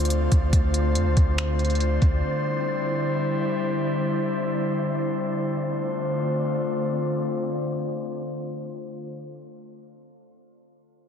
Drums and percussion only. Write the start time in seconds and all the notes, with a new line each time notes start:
0.05 closed hi-hat
0.10 closed hi-hat
0.32 kick, closed hi-hat
0.53 kick, closed hi-hat
0.74 closed hi-hat
0.95 closed hi-hat
1.17 kick, closed hi-hat
1.38 finger snap, closed hi-hat
1.59 closed hi-hat
1.65 closed hi-hat
1.70 closed hi-hat
1.75 closed hi-hat
1.80 closed hi-hat
2.02 kick, closed hi-hat